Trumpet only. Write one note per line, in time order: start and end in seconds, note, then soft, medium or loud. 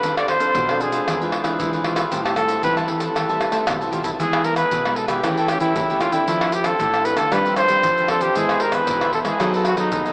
0.00 0.14 B4 medium
0.18 0.28 D5 medium
0.29 0.83 C5 loud
0.81 1.33 G#4 medium
1.60 1.71 E4 medium
1.85 2.21 F4 medium
2.25 2.36 G4 medium
2.37 2.61 A4 loud
2.64 2.76 B4 medium
2.88 3.63 A4 medium
3.93 4.04 F4 medium
4.05 4.11 E4 medium
4.20 4.46 G#4 medium
4.45 4.56 A#4 medium
4.57 4.98 B4 medium
4.97 5.08 A4 medium
5.08 5.39 G4 medium
5.38 5.51 A4 medium
5.49 5.60 G4 medium
5.60 6.02 E4 medium
6.01 6.15 F4 medium
6.13 6.55 E4 medium
6.53 6.67 G4 medium
6.66 7.06 A4 loud
7.05 7.19 B4 medium
7.18 7.34 A4 loud
7.33 7.57 B4 loud
7.57 8.06 C5 loud
8.10 8.24 A4 loud
8.22 8.39 G4 medium
8.37 8.62 G#4 loud
8.61 8.75 A#4 medium
8.74 9.13 B4 loud
9.14 9.20 A4 medium
9.26 9.51 G#4 medium
9.55 9.65 A4 medium
9.66 9.78 F#4 medium
9.78 10.13 D#4 medium